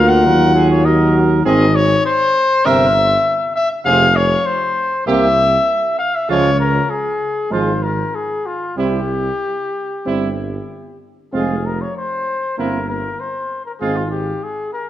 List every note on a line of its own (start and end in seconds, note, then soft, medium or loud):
0.00 0.26 D2 loud
0.00 0.27 A#3 medium
0.00 0.87 F4 medium
0.00 0.21 A#4 medium
0.00 0.10 F5 loud
0.09 0.70 F#5 loud
0.25 1.45 D#2 loud
0.25 0.85 F#3 medium
0.25 0.54 A#4 medium
0.55 0.85 G#4 medium
0.71 0.87 C#5 loud
0.85 1.44 F#3 medium
0.85 1.45 F#4 medium
0.85 1.44 A#4 medium
0.85 1.15 D#5 medium
1.45 1.96 G#1 loud
1.45 1.67 D#3 medium
1.45 1.67 C4 loud
1.45 1.67 G#4 medium
1.45 1.77 D#5 loud
1.76 2.05 C#5 loud
2.06 2.67 C5 loud
2.65 3.16 G1 medium
2.65 2.87 C3 medium
2.65 2.87 C4 medium
2.65 2.86 A#4 medium
2.65 3.55 E5 loud
3.56 3.69 E5 loud
3.85 4.36 F1 loud
3.85 4.07 C3 medium
3.85 4.08 C4 medium
3.85 4.07 G#4 medium
3.85 4.17 F5 loud
4.16 4.48 C#5 loud
4.46 5.07 C5 loud
5.07 5.58 C2 medium
5.07 5.29 C3 medium
5.07 5.29 A#3 medium
5.07 5.28 G4 medium
5.07 5.97 E5 loud
5.99 6.16 F5 loud
6.15 6.30 E5 loud
6.28 6.80 C#2 loud
6.28 6.51 F3 medium
6.28 6.50 G#3 medium
6.28 6.50 F4 medium
6.28 6.59 C#5 loud
6.60 6.91 A#4 loud
6.90 7.54 G#4 medium
7.51 8.03 G#1 medium
7.51 7.73 F3 medium
7.51 7.73 G#3 medium
7.51 7.73 F4 medium
7.51 7.85 C5 loud
7.83 8.17 A#4 medium
8.15 8.48 G#4 medium
8.46 8.77 F4 medium
8.77 9.31 C2 medium
8.77 9.00 G3 medium
8.77 9.00 C4 medium
8.77 9.00 E4 medium
8.77 10.98 G4 loud
10.06 10.59 G1 medium
10.06 10.28 G3 medium
10.06 10.28 C4 medium
10.06 10.28 E4 medium
11.33 11.85 F1 medium
11.33 11.55 G#3 medium
11.33 11.55 C4 medium
11.33 11.55 F4 medium
11.33 11.68 G#4 medium
11.66 11.83 A#4 medium
11.81 11.96 C#5 medium
11.97 12.57 C5 medium
12.58 13.09 G1 medium
12.58 12.80 A#3 medium
12.58 12.80 C4 medium
12.58 12.80 E4 medium
12.58 12.88 A#4 medium
12.89 13.22 A#4 medium
13.20 13.65 C5 medium
13.65 13.72 A#4 medium
13.80 14.32 G#1 medium
13.80 14.03 G#3 medium
13.80 14.03 C4 medium
13.80 14.02 F4 medium
13.80 13.98 G#4 medium
13.96 14.10 F4 medium
14.11 14.45 G4 medium
14.43 14.72 G#4 medium
14.73 14.87 A#4 medium